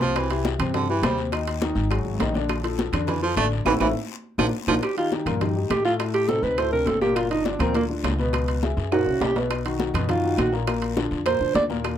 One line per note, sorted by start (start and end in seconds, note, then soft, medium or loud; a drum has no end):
0.00 0.54 C2 medium
0.00 0.25 C3 medium
0.00 0.18 F3 loud
0.00 0.25 C4 medium
0.00 0.26 C5 medium
0.00 high conga medium
0.00 short guiro medium
0.15 0.45 E3 medium
0.15 high bongo medium
0.15 high conga soft
0.15 high timbale medium
0.15 long guiro medium
0.15 claves medium
0.30 0.54 E3 medium
0.30 0.55 E4 medium
0.30 0.55 G4 medium
0.30 high bongo soft
0.30 high conga soft
0.30 high timbale medium
0.45 high bongo medium
0.45 high conga loud
0.45 short guiro medium
0.59 1.00 G2 medium
0.59 0.84 C3 medium
0.59 0.84 C4 medium
0.59 0.84 C5 medium
0.59 high conga soft
0.59 low conga medium
0.59 high timbale loud
0.59 short guiro medium
0.59 claves medium
0.74 0.88 D3 medium
0.74 high bongo medium
0.74 high conga soft
0.74 low conga medium
0.74 high timbale medium
0.74 long guiro medium
0.89 1.01 E3 medium
0.89 1.06 E3 medium
0.89 1.01 E4 medium
0.89 1.01 G4 medium
0.89 high bongo soft
0.89 high conga soft
1.02 1.70 D#2 medium
1.02 1.27 C3 medium
1.02 1.19 G3 medium
1.02 1.27 C4 medium
1.02 1.28 C5 medium
1.02 high bongo soft
1.02 low bongo medium
1.02 high conga medium
1.02 high timbale loud
1.02 low timbale medium
1.02 short guiro medium
1.02 claves medium
1.18 high bongo soft
1.18 short guiro medium
1.32 1.56 D#3 medium
1.32 1.57 D#4 medium
1.32 1.57 D#5 medium
1.32 high bongo medium
1.32 high conga soft
1.32 high timbale medium
1.32 long guiro medium
1.32 claves medium
1.47 high bongo soft
1.47 high conga soft
1.47 high timbale medium
1.62 1.86 D#3 medium
1.62 1.86 D#4 medium
1.62 1.86 D#5 medium
1.62 high bongo medium
1.62 high conga loud
1.62 short guiro medium
1.75 2.03 G#1 medium
1.75 high conga soft
1.75 short guiro medium
1.91 2.15 F#3 medium
1.91 2.15 F#4 medium
1.91 2.15 G#4 medium
1.91 high bongo medium
1.91 high conga soft
1.91 high timbale loud
1.91 long guiro medium
1.91 claves medium
2.05 2.19 G#1 medium
2.05 high bongo soft
2.05 high conga soft
2.19 2.87 A#1 medium
2.19 2.32 D#3 medium
2.19 2.32 D#4 medium
2.19 2.33 D#5 medium
2.19 high bongo soft
2.19 low bongo medium
2.19 high conga medium
2.19 high timbale medium
2.19 low timbale medium
2.19 short guiro medium
2.34 2.58 D3 medium
2.34 2.59 D4 medium
2.34 2.59 D5 medium
2.34 high bongo soft
2.34 high conga medium
2.34 short guiro medium
2.49 high bongo medium
2.49 high conga soft
2.49 high timbale medium
2.49 long guiro medium
2.49 claves medium
2.64 2.88 F3 medium
2.64 2.88 F4 medium
2.64 2.88 A4 medium
2.64 high bongo soft
2.64 high conga soft
2.64 high timbale medium
2.78 high bongo medium
2.78 high conga loud
2.78 short guiro medium
2.93 3.33 F2 loud
2.93 3.17 D3 medium
2.93 3.17 D4 medium
2.93 3.18 D5 medium
2.93 high conga soft
2.93 low conga medium
2.93 high timbale medium
2.93 short guiro medium
2.93 claves medium
3.07 3.21 E3 medium
3.07 high bongo medium
3.07 high conga soft
3.07 low conga medium
3.07 high timbale medium
3.07 long guiro medium
3.22 3.34 F3 medium
3.22 3.36 F3 loud
3.22 3.34 F4 medium
3.22 3.34 A4 medium
3.22 high bongo soft
3.22 high conga soft
3.36 3.64 A1 medium
3.36 3.61 D3 medium
3.36 3.46 A3 loud
3.36 3.61 D4 medium
3.36 3.61 D5 medium
3.36 high bongo soft
3.36 low bongo medium
3.36 high conga medium
3.36 high timbale medium
3.36 short guiro medium
3.36 claves medium
3.51 high bongo soft
3.51 high conga soft
3.51 short guiro medium
3.65 3.76 A1 medium
3.65 3.73 E3 loud
3.65 3.75 A3 loud
3.65 3.75 C4 loud
3.65 3.75 E4 medium
3.65 high bongo loud
3.65 high conga medium
3.65 high timbale loud
3.65 long guiro loud
3.65 claves loud
3.80 3.91 A1 medium
3.80 3.87 E3 medium
3.80 3.90 A3 loud
3.80 3.90 C4 loud
3.80 3.90 E4 loud
3.80 high bongo loud
3.80 high conga medium
3.80 high timbale loud
3.80 long guiro loud
3.80 claves loud
4.38 4.49 A#1 loud
4.38 4.46 F3 medium
4.38 4.48 A#3 medium
4.38 4.48 D4 medium
4.38 4.48 F4 medium
4.38 high bongo loud
4.38 high conga loud
4.38 high timbale medium
4.38 long guiro loud
4.38 claves loud
4.67 4.79 A#1 medium
4.67 4.75 F3 loud
4.67 4.77 A#3 loud
4.67 4.77 D4 loud
4.67 4.77 F4 loud
4.67 high bongo loud
4.67 high conga medium
4.67 high timbale loud
4.67 long guiro loud
4.67 claves loud
4.82 4.97 G4 medium
4.82 high bongo medium
4.82 high timbale medium
4.82 long guiro medium
4.82 claves medium
4.97 5.09 D#3 medium
4.97 5.09 D#4 medium
4.97 5.11 F4 medium
4.97 5.09 G4 medium
4.97 high bongo soft
4.97 high conga soft
4.97 high timbale medium
5.12 5.24 D#3 medium
5.12 5.24 D#4 medium
5.12 5.24 G4 medium
5.12 high bongo medium
5.12 high conga medium
5.12 short guiro medium
5.26 5.67 G2 medium
5.26 5.38 A#2 medium
5.26 5.39 A#3 medium
5.26 5.39 A#4 medium
5.26 high conga soft
5.26 low conga medium
5.26 high timbale medium
5.26 short guiro medium
5.26 claves medium
5.41 5.53 D#3 medium
5.41 5.54 D#4 medium
5.41 5.54 G4 medium
5.41 high bongo medium
5.41 high conga soft
5.41 low conga medium
5.41 high timbale medium
5.41 long guiro medium
5.56 5.80 D#3 medium
5.56 5.80 D#4 medium
5.56 5.80 G4 medium
5.56 high bongo soft
5.56 high conga soft
5.70 6.38 A2 medium
5.70 5.84 G4 medium
5.70 high bongo soft
5.70 low bongo medium
5.70 high conga medium
5.70 high timbale loud
5.70 short guiro medium
5.70 claves medium
5.85 5.97 A2 medium
5.85 5.97 A3 medium
5.85 5.94 F4 medium
5.85 5.97 A4 medium
5.85 high bongo soft
5.85 high conga soft
5.85 short guiro medium
5.99 6.23 A2 medium
5.99 6.24 A3 medium
5.99 6.24 A4 medium
5.99 high bongo medium
5.99 high conga soft
5.99 high timbale medium
5.99 long guiro medium
5.99 claves medium
6.14 6.30 G4 medium
6.14 high bongo soft
6.14 high conga soft
6.14 high timbale medium
6.29 6.53 C3 medium
6.29 6.53 C4 medium
6.29 6.53 D#4 medium
6.29 6.44 A4 medium
6.29 high bongo medium
6.29 high conga medium
6.29 short guiro medium
6.43 6.84 D2 medium
6.43 6.60 B4 medium
6.43 high conga soft
6.43 short guiro medium
6.58 6.70 A2 medium
6.58 6.70 A3 medium
6.58 6.70 A4 medium
6.58 6.72 C5 loud
6.58 high bongo medium
6.58 high conga soft
6.58 high timbale medium
6.58 long guiro medium
6.58 claves medium
6.72 6.97 C3 medium
6.72 6.97 C4 medium
6.72 6.97 D4 medium
6.72 6.89 A#4 medium
6.72 high bongo soft
6.72 high conga soft
6.86 7.54 G1 medium
6.86 7.01 A4 medium
6.86 high bongo soft
6.86 low bongo medium
6.86 high conga medium
6.86 high timbale medium
6.86 short guiro medium
7.01 7.26 A#2 medium
7.01 7.26 A#3 medium
7.01 7.17 G4 medium
7.01 7.26 A#4 medium
7.01 high bongo soft
7.01 high conga medium
7.01 short guiro medium
7.16 7.30 F4 medium
7.16 high bongo medium
7.16 high conga soft
7.16 high timbale medium
7.16 long guiro medium
7.16 claves medium
7.31 7.43 D3 medium
7.31 7.43 D4 medium
7.31 7.47 D#4 medium
7.31 7.44 F4 medium
7.31 high bongo soft
7.31 high conga soft
7.31 high timbale medium
7.45 7.58 D3 medium
7.45 7.62 D4 medium
7.45 7.58 D4 medium
7.45 7.58 F4 medium
7.45 high bongo medium
7.45 high conga loud
7.45 short guiro medium
7.59 8.01 D2 loud
7.59 7.72 A#2 medium
7.59 7.73 A#3 medium
7.59 7.75 C4 medium
7.59 7.73 A#4 medium
7.59 high conga soft
7.59 low conga medium
7.59 high timbale medium
7.59 short guiro medium
7.59 claves medium
7.75 7.87 D3 medium
7.75 7.84 A#3 medium
7.75 7.87 D4 medium
7.75 7.88 F4 medium
7.75 high bongo medium
7.75 high conga soft
7.75 high timbale medium
7.75 long guiro medium
7.90 8.14 D3 medium
7.90 8.14 D4 medium
7.90 8.14 F4 medium
7.90 high bongo soft
7.90 high conga soft
8.03 8.71 C#2 medium
8.03 high bongo soft
8.03 low bongo medium
8.03 high conga medium
8.03 high timbale medium
8.03 low timbale medium
8.03 short guiro medium
8.03 claves medium
8.19 8.31 B2 medium
8.19 8.31 B3 medium
8.19 8.31 B4 medium
8.19 high bongo soft
8.19 high conga soft
8.19 short guiro medium
8.33 8.58 B2 medium
8.33 8.58 B3 medium
8.33 8.58 B4 medium
8.33 high bongo medium
8.33 high conga soft
8.33 high timbale loud
8.33 long guiro medium
8.33 claves medium
8.48 high bongo soft
8.48 high conga soft
8.48 high timbale medium
8.63 8.87 E3 medium
8.63 8.87 E4 medium
8.63 8.87 G#4 medium
8.63 high bongo medium
8.63 high conga medium
8.63 short guiro medium
8.77 9.04 F#2 loud
8.77 high conga soft
8.77 short guiro medium
8.92 9.04 A#2 medium
8.92 9.04 A#3 medium
8.92 9.24 F#4 medium
8.92 9.05 A#4 medium
8.92 high bongo medium
8.92 high conga soft
8.92 high timbale medium
8.92 long guiro medium
8.92 claves medium
9.06 9.20 C2 medium
9.06 9.31 C#3 medium
9.06 9.31 C#4 medium
9.06 9.31 E4 medium
9.06 high bongo soft
9.06 high conga soft
9.21 9.89 B1 medium
9.21 9.36 G4 medium
9.21 high bongo soft
9.21 low bongo medium
9.21 high conga medium
9.21 low timbale loud
9.21 short guiro medium
9.36 9.60 B2 medium
9.36 9.60 B3 medium
9.36 9.60 B4 medium
9.36 high bongo soft
9.36 high conga medium
9.36 low timbale medium
9.36 short guiro medium
9.50 high bongo medium
9.50 high timbale loud
9.50 long guiro medium
9.50 claves medium
9.65 9.77 D#3 medium
9.65 9.77 D#4 medium
9.65 9.77 F#4 medium
9.65 high bongo soft
9.65 high conga soft
9.65 high timbale medium
9.79 9.92 D#3 medium
9.79 9.92 D#4 medium
9.79 9.92 F#4 medium
9.79 high bongo medium
9.79 high conga loud
9.79 short guiro medium
9.94 10.35 F#2 loud
9.94 10.06 B2 medium
9.94 10.06 B3 medium
9.94 10.07 B4 medium
9.94 high conga soft
9.94 low conga medium
9.94 high timbale loud
9.94 short guiro medium
9.94 claves medium
10.09 10.21 D#3 medium
10.09 10.21 D#4 medium
10.09 10.41 F4 medium
10.09 10.21 F#4 medium
10.09 high bongo medium
10.09 high conga soft
10.09 low conga medium
10.09 high timbale medium
10.09 long guiro medium
10.24 10.48 D#3 medium
10.24 10.48 D#4 medium
10.24 10.48 F#4 medium
10.24 high bongo soft
10.24 high conga soft
10.38 11.06 A#1 medium
10.38 10.53 F#4 medium
10.38 high bongo soft
10.38 low bongo medium
10.38 high conga medium
10.38 high timbale medium
10.38 short guiro medium
10.38 claves medium
10.52 10.65 A#2 medium
10.52 10.65 A#3 medium
10.52 10.65 A#4 medium
10.52 high bongo soft
10.52 high conga soft
10.52 short guiro medium
10.67 10.91 A#2 medium
10.67 10.91 A#3 medium
10.67 10.92 A#4 medium
10.67 high bongo medium
10.67 high conga soft
10.67 high timbale loud
10.67 long guiro medium
10.67 claves medium
10.82 high bongo soft
10.82 high conga soft
10.82 high timbale medium
10.96 11.20 D3 medium
10.96 11.21 D4 medium
10.96 11.21 F4 medium
10.96 high bongo medium
10.96 high conga medium
10.96 short guiro medium
11.11 11.38 F2 loud
11.11 high conga soft
11.11 short guiro medium
11.26 11.38 A#2 medium
11.26 11.38 A#3 medium
11.26 11.38 A#4 medium
11.26 11.53 C5 loud
11.26 high bongo medium
11.26 high conga soft
11.26 high timbale loud
11.26 long guiro medium
11.26 claves medium
11.40 11.54 F2 medium
11.40 11.65 D3 medium
11.40 11.65 D4 medium
11.40 11.65 F4 medium
11.40 high bongo soft
11.40 high conga soft
11.55 11.98 D#2 loud
11.55 11.64 D5 loud
11.55 high bongo soft
11.55 low bongo medium
11.55 high conga medium
11.55 high timbale medium
11.55 low timbale medium
11.55 short guiro medium
11.70 11.94 A#2 medium
11.70 11.94 A#3 medium
11.70 11.94 A#4 medium
11.70 high bongo soft
11.70 high conga medium
11.70 short guiro medium
11.84 high bongo medium
11.84 high conga soft
11.84 high timbale loud
11.84 long guiro medium
11.84 claves medium